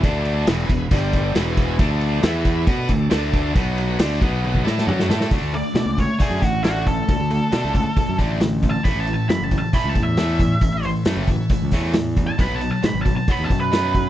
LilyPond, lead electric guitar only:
\new Staff \with { instrumentName = "Lead electric guitar" } { \time 4/4 \key d \lydian \tempo 4 = 136 r1 | r1 | r1 | r8 d''4 cis''8 gis'8 fis'8 fis'8 a'8~ |
a'2~ a'8 r8 \tuplet 3/2 { r4 a''8 } | \tuplet 3/2 { b''8 a''8 a''8 b''8 a''8 a''8 b''8 a''8 e''8~ } e''4~ | e''8 r2 r8 \tuplet 3/2 { r4 a''8 } | \tuplet 3/2 { b''8 a''8 a''8 b''8 a''8 a''8 b''8 a''8 b'8~ } b'4 | }